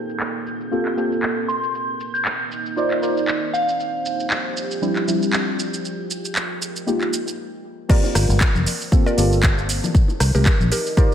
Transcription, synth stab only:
0, 0, Header, 1, 2, 480
1, 0, Start_track
1, 0, Key_signature, -2, "minor"
1, 0, Tempo, 512821
1, 1631, Time_signature, 4, 2, 24, 8
1, 10432, End_track
2, 0, Start_track
2, 0, Title_t, "Synth stab"
2, 0, Program_c, 0, 62
2, 0, Note_on_c, 0, 58, 85
2, 0, Note_on_c, 0, 60, 81
2, 0, Note_on_c, 0, 65, 79
2, 0, Note_on_c, 0, 67, 83
2, 0, Note_on_c, 0, 69, 100
2, 640, Note_off_c, 0, 58, 0
2, 642, Note_off_c, 0, 60, 0
2, 644, Note_off_c, 0, 65, 0
2, 646, Note_off_c, 0, 67, 0
2, 648, Note_off_c, 0, 69, 0
2, 666, Note_on_c, 0, 58, 92
2, 668, Note_on_c, 0, 60, 79
2, 670, Note_on_c, 0, 65, 80
2, 672, Note_on_c, 0, 67, 82
2, 674, Note_on_c, 0, 69, 95
2, 882, Note_off_c, 0, 58, 0
2, 883, Note_off_c, 0, 60, 0
2, 884, Note_off_c, 0, 65, 0
2, 885, Note_off_c, 0, 67, 0
2, 886, Note_off_c, 0, 69, 0
2, 902, Note_on_c, 0, 58, 83
2, 906, Note_on_c, 0, 60, 75
2, 910, Note_on_c, 0, 65, 74
2, 914, Note_on_c, 0, 67, 77
2, 918, Note_on_c, 0, 69, 92
2, 1613, Note_off_c, 0, 58, 0
2, 1615, Note_off_c, 0, 60, 0
2, 1617, Note_off_c, 0, 65, 0
2, 1619, Note_off_c, 0, 67, 0
2, 1621, Note_off_c, 0, 69, 0
2, 2586, Note_on_c, 0, 63, 88
2, 2588, Note_on_c, 0, 65, 82
2, 2590, Note_on_c, 0, 70, 78
2, 2592, Note_on_c, 0, 72, 80
2, 2594, Note_on_c, 0, 74, 100
2, 2802, Note_off_c, 0, 63, 0
2, 2803, Note_off_c, 0, 65, 0
2, 2804, Note_off_c, 0, 70, 0
2, 2806, Note_off_c, 0, 72, 0
2, 2806, Note_off_c, 0, 74, 0
2, 2825, Note_on_c, 0, 63, 87
2, 2827, Note_on_c, 0, 65, 73
2, 2830, Note_on_c, 0, 70, 80
2, 2832, Note_on_c, 0, 72, 75
2, 2834, Note_on_c, 0, 74, 92
2, 3295, Note_off_c, 0, 63, 0
2, 3296, Note_off_c, 0, 65, 0
2, 3297, Note_off_c, 0, 70, 0
2, 3298, Note_off_c, 0, 72, 0
2, 3299, Note_off_c, 0, 74, 0
2, 4505, Note_on_c, 0, 53, 86
2, 4507, Note_on_c, 0, 55, 81
2, 4509, Note_on_c, 0, 60, 80
2, 4511, Note_on_c, 0, 62, 79
2, 4513, Note_on_c, 0, 64, 98
2, 4722, Note_off_c, 0, 53, 0
2, 4723, Note_off_c, 0, 55, 0
2, 4724, Note_off_c, 0, 60, 0
2, 4725, Note_off_c, 0, 62, 0
2, 4726, Note_off_c, 0, 64, 0
2, 4744, Note_on_c, 0, 53, 85
2, 4747, Note_on_c, 0, 55, 80
2, 4749, Note_on_c, 0, 60, 81
2, 4751, Note_on_c, 0, 62, 75
2, 4753, Note_on_c, 0, 64, 91
2, 5214, Note_off_c, 0, 53, 0
2, 5216, Note_off_c, 0, 55, 0
2, 5217, Note_off_c, 0, 60, 0
2, 5218, Note_off_c, 0, 62, 0
2, 5219, Note_off_c, 0, 64, 0
2, 6425, Note_on_c, 0, 56, 86
2, 6427, Note_on_c, 0, 58, 82
2, 6429, Note_on_c, 0, 63, 78
2, 6431, Note_on_c, 0, 65, 84
2, 6433, Note_on_c, 0, 67, 99
2, 6642, Note_off_c, 0, 56, 0
2, 6643, Note_off_c, 0, 58, 0
2, 6644, Note_off_c, 0, 63, 0
2, 6645, Note_off_c, 0, 65, 0
2, 6646, Note_off_c, 0, 67, 0
2, 7381, Note_on_c, 0, 58, 104
2, 7385, Note_on_c, 0, 60, 96
2, 7389, Note_on_c, 0, 65, 93
2, 7393, Note_on_c, 0, 67, 94
2, 7397, Note_on_c, 0, 70, 114
2, 8105, Note_off_c, 0, 58, 0
2, 8108, Note_off_c, 0, 60, 0
2, 8109, Note_off_c, 0, 65, 0
2, 8112, Note_off_c, 0, 67, 0
2, 8114, Note_off_c, 0, 70, 0
2, 8345, Note_on_c, 0, 58, 91
2, 8347, Note_on_c, 0, 60, 85
2, 8349, Note_on_c, 0, 65, 84
2, 8351, Note_on_c, 0, 67, 89
2, 8353, Note_on_c, 0, 69, 102
2, 8562, Note_off_c, 0, 58, 0
2, 8563, Note_off_c, 0, 60, 0
2, 8564, Note_off_c, 0, 65, 0
2, 8565, Note_off_c, 0, 67, 0
2, 8566, Note_off_c, 0, 69, 0
2, 8581, Note_on_c, 0, 58, 89
2, 8585, Note_on_c, 0, 60, 82
2, 8590, Note_on_c, 0, 65, 81
2, 8594, Note_on_c, 0, 67, 82
2, 8598, Note_on_c, 0, 69, 96
2, 9293, Note_off_c, 0, 58, 0
2, 9295, Note_off_c, 0, 60, 0
2, 9297, Note_off_c, 0, 65, 0
2, 9299, Note_off_c, 0, 67, 0
2, 9301, Note_off_c, 0, 69, 0
2, 10265, Note_on_c, 0, 63, 92
2, 10267, Note_on_c, 0, 65, 86
2, 10269, Note_on_c, 0, 70, 86
2, 10271, Note_on_c, 0, 72, 88
2, 10274, Note_on_c, 0, 74, 98
2, 10432, Note_off_c, 0, 63, 0
2, 10432, Note_off_c, 0, 65, 0
2, 10432, Note_off_c, 0, 70, 0
2, 10432, Note_off_c, 0, 72, 0
2, 10432, Note_off_c, 0, 74, 0
2, 10432, End_track
0, 0, End_of_file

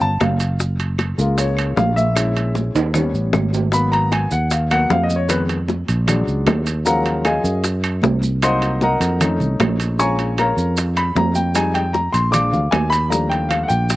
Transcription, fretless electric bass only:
0, 0, Header, 1, 2, 480
1, 0, Start_track
1, 0, Tempo, 391389
1, 728, Time_signature, 4, 2, 24, 8
1, 17123, End_track
2, 0, Start_track
2, 0, Title_t, "Fretless electric bass"
2, 0, Program_c, 0, 35
2, 11, Note_on_c, 0, 31, 72
2, 233, Note_off_c, 0, 31, 0
2, 257, Note_on_c, 0, 30, 86
2, 1382, Note_off_c, 0, 30, 0
2, 1452, Note_on_c, 0, 37, 96
2, 2123, Note_off_c, 0, 37, 0
2, 2173, Note_on_c, 0, 34, 90
2, 3301, Note_off_c, 0, 34, 0
2, 3375, Note_on_c, 0, 39, 86
2, 3821, Note_off_c, 0, 39, 0
2, 3850, Note_on_c, 0, 33, 72
2, 4075, Note_off_c, 0, 33, 0
2, 4093, Note_on_c, 0, 32, 86
2, 5223, Note_off_c, 0, 32, 0
2, 5294, Note_on_c, 0, 39, 94
2, 5967, Note_off_c, 0, 39, 0
2, 6009, Note_on_c, 0, 41, 92
2, 7141, Note_off_c, 0, 41, 0
2, 7222, Note_on_c, 0, 34, 101
2, 7667, Note_off_c, 0, 34, 0
2, 7695, Note_on_c, 0, 37, 73
2, 7920, Note_off_c, 0, 37, 0
2, 7929, Note_on_c, 0, 39, 97
2, 9060, Note_off_c, 0, 39, 0
2, 9127, Note_on_c, 0, 42, 98
2, 9803, Note_off_c, 0, 42, 0
2, 9853, Note_on_c, 0, 36, 97
2, 10980, Note_off_c, 0, 36, 0
2, 11044, Note_on_c, 0, 41, 100
2, 11495, Note_off_c, 0, 41, 0
2, 11536, Note_on_c, 0, 36, 75
2, 11758, Note_off_c, 0, 36, 0
2, 11771, Note_on_c, 0, 34, 98
2, 12898, Note_off_c, 0, 34, 0
2, 12962, Note_on_c, 0, 41, 87
2, 13637, Note_off_c, 0, 41, 0
2, 13680, Note_on_c, 0, 41, 88
2, 14810, Note_off_c, 0, 41, 0
2, 14887, Note_on_c, 0, 34, 94
2, 15333, Note_off_c, 0, 34, 0
2, 15363, Note_on_c, 0, 38, 76
2, 15588, Note_off_c, 0, 38, 0
2, 15605, Note_on_c, 0, 39, 91
2, 16731, Note_off_c, 0, 39, 0
2, 16805, Note_on_c, 0, 34, 99
2, 17123, Note_off_c, 0, 34, 0
2, 17123, End_track
0, 0, End_of_file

